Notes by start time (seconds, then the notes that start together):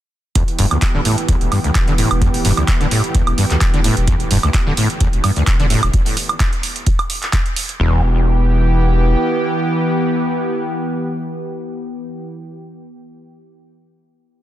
0.35 E2 E3 B3 G4, kick, closed hi-hat
0.48 closed hi-hat
0.59 E1 G2, open hi-hat
0.71 D2, closed hi-hat, high woodblock
0.82 kick, clap, closed hi-hat
0.95 D1 D3
1.05 A2, open hi-hat
1.18 closed hi-hat
1.29 E2, kick, closed hi-hat
1.41 E1, closed hi-hat
1.52 G2, open hi-hat, high woodblock
1.64 D2, closed hi-hat
1.75 E1, kick, clap, closed hi-hat
1.88 D3, closed hi-hat
1.98 A2, open hi-hat
2.11 E1, closed hi-hat, high woodblock
2.22 E2, kick, closed hi-hat
2.34 open hi-hat
2.45 E1 G2, open hi-hat
2.57 D2, closed hi-hat, high woodblock
2.68 kick, clap, closed hi-hat
2.81 D1 D3, closed hi-hat
2.91 A2, open hi-hat
3.04 closed hi-hat
3.15 E2, kick, closed hi-hat
3.27 E1, closed hi-hat, high woodblock
3.38 G2, open hi-hat
3.50 D2, clap, closed hi-hat
3.61 E1, kick, clap, closed hi-hat
3.74 D3, closed hi-hat
3.84 A2, open hi-hat
3.97 E1, closed hi-hat
4.08 E2, kick, closed hi-hat
4.20 closed hi-hat
4.31 E1 G2, open hi-hat
4.43 D2, closed hi-hat, high woodblock
4.54 kick, clap, closed hi-hat
4.67 D1 D3
4.77 A2, open hi-hat
4.90 closed hi-hat
5.01 E2, kick, closed hi-hat
5.13 E1, closed hi-hat
5.24 G2, open hi-hat, high woodblock
5.36 D2, closed hi-hat
5.47 E1, kick, clap, closed hi-hat
5.60 D3, closed hi-hat
5.70 A2, open hi-hat
5.83 E1, closed hi-hat, high woodblock
5.93 kick, closed hi-hat
6.06 open hi-hat
6.17 open hi-hat
6.29 closed hi-hat, high woodblock
6.40 kick, clap, closed hi-hat
6.53 closed hi-hat
6.63 open hi-hat
6.76 closed hi-hat
6.86 kick, closed hi-hat
6.99 closed hi-hat, high woodblock
7.10 open hi-hat
7.22 clap, closed hi-hat
7.33 kick, clap, closed hi-hat
7.46 closed hi-hat
7.56 open hi-hat
7.69 closed hi-hat
7.79 E1 E2 E3 B3 G4